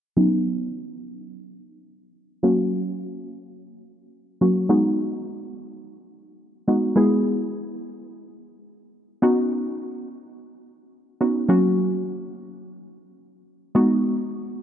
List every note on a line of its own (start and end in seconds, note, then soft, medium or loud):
0.17 2.39 F#3 medium
0.17 2.39 B3 medium
0.17 2.40 C#4 medium
0.17 2.40 D#4 medium
2.43 4.37 F#3 medium
2.43 4.37 A#3 medium
2.43 4.38 C#4 medium
2.43 4.38 F#4 medium
4.41 4.70 F#3 medium
4.41 4.70 A#3 medium
4.41 4.70 C#4 soft
4.41 4.69 F#4 medium
4.69 6.64 G#3 medium
4.69 6.64 B3 medium
4.69 6.64 D#4 medium
4.69 6.64 F#4 medium
6.68 6.94 G#3 medium
6.68 6.95 B3 medium
6.68 6.96 D#4 medium
6.68 6.96 F#4 medium
6.96 9.18 G#3 medium
6.96 9.19 B3 medium
6.96 9.19 E4 medium
6.96 9.19 G#4 medium
9.22 11.17 B3 medium
9.22 11.17 C#4 medium
9.22 11.17 D#4 medium
9.22 11.17 F#4 medium
11.21 11.49 B3 medium
11.21 11.48 C#4 medium
11.21 11.49 D#4 medium
11.21 11.48 F#4 medium
11.48 13.71 F#3 medium
11.48 13.71 A#3 medium
11.48 13.71 C#4 medium
11.48 13.72 F#4 medium
13.75 14.62 G#3 medium
13.75 14.62 B3 medium
13.75 14.62 D#4 medium
13.75 14.62 F#4 medium